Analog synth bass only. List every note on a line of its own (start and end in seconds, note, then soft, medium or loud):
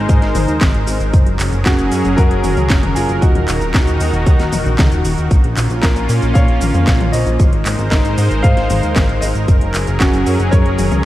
0.09 0.20 G#2 loud
0.22 0.33 G#1 medium
0.35 0.46 G#1 medium
0.48 0.59 D#2 medium
0.61 0.73 G#1 loud
0.74 0.85 G#1 medium
0.87 0.99 G#1 loud
1.00 1.12 G#1 medium
1.14 1.25 F#1 loud
1.26 1.38 F#1 medium
1.39 1.51 F#1 loud
1.52 1.64 F#1 medium
1.66 1.77 F#1 loud
1.79 1.90 F#1 medium
1.92 2.03 F#2 medium
2.05 2.16 F#1 medium
2.18 2.29 F#2 loud
2.31 2.42 F#1 medium
2.44 2.55 F#1 medium
2.57 2.68 C#2 medium
2.70 2.81 F#1 loud
2.83 2.94 F#1 medium
2.96 3.07 F#1 loud
3.09 3.20 F#1 medium
3.22 3.33 D#1 loud
3.35 3.46 D#1 medium
3.48 3.59 D#1 medium
3.61 3.73 D#1 medium
3.74 3.86 D#1 loud
3.87 3.99 D#1 medium
4.00 4.12 D#2 medium
4.13 4.25 D#1 medium
4.27 4.38 D#2 loud
4.40 4.51 D#1 medium
4.53 4.64 D#1 loud
4.66 4.77 A#1 medium
4.79 4.90 C#2 loud
4.92 5.03 D#1 medium
5.05 5.16 D#1 loud
5.18 5.29 D#1 medium
5.31 5.42 A#1 loud
5.44 5.55 A#1 medium
5.57 5.68 A#1 medium
5.70 5.81 A#1 medium
5.83 5.94 A#1 loud
5.96 6.07 A#1 medium
6.09 6.20 A#2 medium
6.22 6.33 A#1 medium
6.35 6.46 A#2 loud
6.48 6.59 A#1 medium
6.61 6.73 A#1 medium
6.74 6.86 F2 medium
6.87 6.99 A#1 loud
7.00 7.12 A#1 medium
7.13 7.25 A#1 loud
7.26 7.38 A#1 medium
7.40 7.51 G#1 loud
7.53 7.64 G#1 medium
7.66 7.77 G#1 medium
7.79 7.90 G#1 medium
7.92 8.03 G#1 loud
8.05 8.16 G#1 medium
8.18 8.29 G#2 medium
8.31 8.42 G#1 medium
8.44 8.55 G#2 loud
8.57 8.68 G#1 medium
8.70 8.81 G#1 loud
8.83 8.94 D#2 medium
8.96 9.07 G#1 loud
9.09 9.20 G#1 medium
9.22 9.33 G#1 loud
9.35 9.46 G#1 medium
9.48 9.59 F#1 loud
9.61 9.73 F#1 medium
9.74 9.86 F#1 medium
9.87 9.99 F#1 medium
10.01 10.12 F#1 loud
10.14 10.25 F#1 medium
10.27 10.38 F#2 loud
10.40 10.51 F#1 medium
10.53 10.64 F#2 loud
10.66 10.77 F#1 medium
10.79 10.90 F#1 loud
10.92 11.03 C#2 medium